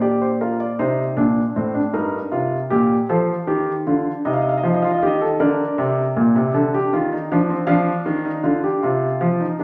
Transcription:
Already playing: A#2
0.01 G4 D5
0.21 C5
0.41 F4 A#4
0.60 D5
0.79 C3 D#4 C5
1.17 A#2 D4
1.56 A2 C4
1.74 D4
1.94 G2 D#4 A#4
2.32 C3 F4
2.70 A#2 G4
3.09 F3 A4 C5
3.47 D#3 G4
3.87 D3 F4
4.25 C3 D#4 D#5
4.33 F5
4.41 D#5
4.49 F5
4.58 D#5
4.63 F3 F5
4.74 D#5
4.82 F4 F5
4.91 D#5
4.98 F5
5.03 D#3 G4 D#5
5.21 A4
5.40 D3 A#4 D5
5.78 C3
6.16 A#2
6.36 C3
6.54 D3 A4
6.74 G4
6.93 D#3 F4
7.13 D#4
7.32 F3 D4
7.50 C4
7.67 F3 D4 F5
8.06 D#3
8.25 D#4
8.43 D3 F4
8.64 G4
8.83 C3 F4
9.21 F3
9.40 D#4
9.59 D#3 D4

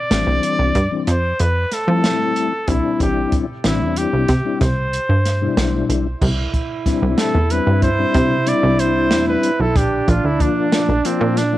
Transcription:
Already playing: D5
0.10 A1 E3 G3 C4 D4, snare, closed hi-hat
0.27 C2
0.43 closed hi-hat
0.59 C2
0.75 G2, kick, closed hi-hat
0.91 E3 G3 C4 D4
1.07 F2 C5, closed hi-hat
1.39 F2 B4, closed hi-hat
1.72 A4, snare, closed hi-hat
1.87 F3 G3 A3 C4 E4
2.04 snare, closed hi-hat
2.36 closed hi-hat
2.67 C2 G3 C4 D4 E4, kick, closed hi-hat
3.00 A1 G4, kick, closed hi-hat
3.32 kick, closed hi-hat
3.64 A1 G3 C4 D4 E4, snare, closed hi-hat
3.81 E2
3.96 G4, closed hi-hat
4.13 C2
4.28 C3, kick, snare, closed hi-hat
4.45 G3 C4 D4 E4
4.61 C2 C5, kick, snare, closed hi-hat
4.93 closed hi-hat
5.09 G2
5.25 snare, closed hi-hat
5.42 B2 G3 D4 E4
5.57 B1, snare, closed hi-hat
5.89 B1, closed hi-hat
6.21 C2 E4, kick, crash
6.54 kick, closed hi-hat
6.86 G3 C4 D4 E4, kick, snare, closed hi-hat
7.02 C2
7.18 A4, snare, closed hi-hat
7.35 E2
7.50 G3 C4 D4 E4 B4, closed hi-hat
7.67 G2
7.82 C5, kick, closed hi-hat
7.99 G3 C4 D4 E4
8.14 C3, kick, closed hi-hat
8.46 G3 C4 D4 E4 D5, closed hi-hat
8.63 C2
8.79 C5, closed hi-hat
9.11 E2, snare, closed hi-hat
9.28 B4
9.43 closed hi-hat
9.60 B1 A4
9.76 A#1 D4 G4, kick, closed hi-hat
10.08 A#1 F4, kick, closed hi-hat
10.24 D2 E4
10.39 F3 A#3 D4 F4, kick, closed hi-hat
10.72 snare, closed hi-hat
10.89 A#1
11.05 F3 A#3 C4 D4 F4, closed hi-hat
11.21 A#2
11.37 D4, snare, closed hi-hat
11.53 F3 A#3 D4 F4

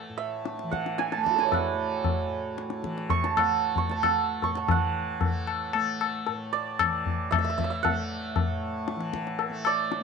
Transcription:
Already playing: E3 A3 F#5 G#5
0.09 A2
0.18 E5
0.46 tabla te
0.59 E3, tabla te
0.71 F#5, tabla ke
0.86 tabla te
0.98 G#5, tabla te
1.12 A5, tabla te
1.18 A3
1.24 D4 E4, tabla ke
1.30 F#4
1.34 G#4 A4
1.39 B4 G#5, tabla te
1.43 C#5 D5
1.48 E5, tabla tin, tabla ge
1.53 F#5
1.74 A3
2.04 tabla tin, tabla ge
2.28 A2
2.58 tabla te
2.70 tabla te
2.82 E3, tabla ke
2.98 tabla te
3.10 C#6, tabla tin, tabla ge
3.24 A5, tabla te
3.37 A3 F#5, tabla na, tabla ge
3.76 C#6, tabla tin, tabla ge
3.89 A3 A5, tabla te
4.03 F#5, tabla na, tabla ge
4.42 A2 C#6, tabla tin, tabla ge
4.55 A5, tabla te
4.67 E3 F#5, tabla tin, tabla ge
5.21 A3, tabla tin, tabla ge
5.47 tabla na
5.73 A3, tabla na
6.01 tabla na
6.27 A2, tabla tin
6.53 D5
6.79 E3, tabla na, tabla ge
7.06 tabla ge
7.31 E5, tabla na, tabla ge
7.35 A3 E5
7.44 E5
7.50 E5
7.58 E5, tabla ge
7.64 E5
7.70 E5
7.83 F#5, tabla tin, tabla ge
7.89 A3
8.36 tabla tin, tabla ge
8.45 A2
8.88 tabla te
8.96 E3
9.01 tabla te
9.13 tabla ke
9.27 tabla te
9.39 tabla tin
9.49 A3
9.65 D5, tabla na
9.92 tabla te

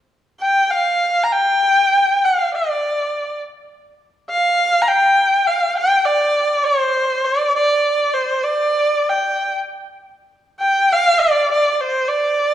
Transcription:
0.40 G5
0.71 F5
1.24 A#5
1.33 G5
2.25 F5
2.55 D5
4.30 F5
4.82 A#5
4.88 G5
5.47 F5
5.77 G5
6.05 D5
6.65 C5
7.25 D5
7.55 D5
8.13 C5
8.44 D5
9.09 G5
10.60 G5
10.92 F5
11.20 D5
11.52 D5
11.72 D5
11.81 C5
12.08 D5

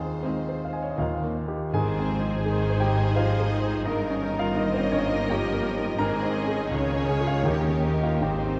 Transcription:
Already playing: D#2 D#3 C4 F4 G#4 C5 F5
0.22 G#3 C4 G#4 C5 D#5
0.28 D#4
0.49 C5
0.65 F5
0.73 D#5 G#5
0.83 C#5
0.91 D#5
0.98 D#2 D#3 D#4 F4 G4 A#4 F5
1.23 A#3
1.48 D#4 G4
1.71 G#1 G#2 D#3 C4 G#4 C5 G#5
1.99 C4
2.09 F3
2.19 D#4
2.43 D#3 D#4 G#4 C5
2.70 C5
2.80 D#3 G4 D#5 G5
2.93 D#5
3.16 F3 F4 C5 F5
3.40 G#4
3.53 D#3
3.62 D#4
3.86 G1 G2 D#3 D#4 A#4 D#5
4.09 C#4
4.32 D#4
4.39 F4 F5
4.53 A#3 D#4 A#4 C5 D#5
4.58 A#4
4.74 C4 C5
4.81 C#5
4.92 C#4 C#5
5.05 D#5
5.29 F3 G4 C#5 G5
5.33 A#4
5.54 A#4
5.77 D#4
5.99 G#1 G#2 D#3 C4 G#4 A#4 C5 D#5 A#5
6.22 C4
6.35 C#4 C#5
6.48 D#4 G#4
6.71 C#2 G#4 C#5
6.96 C#4
7.08 G#4 G#5
7.21 F4 G#4
7.27 F4 F5
7.44 D#2 D#4 G4 A#4 G5
7.68 C#4
7.92 D#4 D#5
8.03 F4 F5
8.20 G#1 G#2 D#3 C4 D#4 G4 C5 G5
8.48 C4

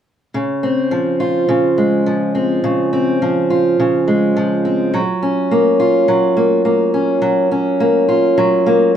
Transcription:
0.34 C#3
0.63 C4
0.91 F3
1.20 F4
1.49 C#3
1.78 G#3
2.06 F3
2.35 C4
2.64 C#3
2.93 C4
3.22 F3
3.50 F4
3.80 C#3
4.08 G#3
4.36 F3
4.65 C4
4.94 F#3
5.22 C#4
5.51 A#3
5.80 F4
6.08 F#3
6.37 A#3
6.65 A#3
6.94 C#4
7.22 F#3
7.51 C#4
7.80 A#3
8.09 F4
8.38 F#3
8.66 A#3

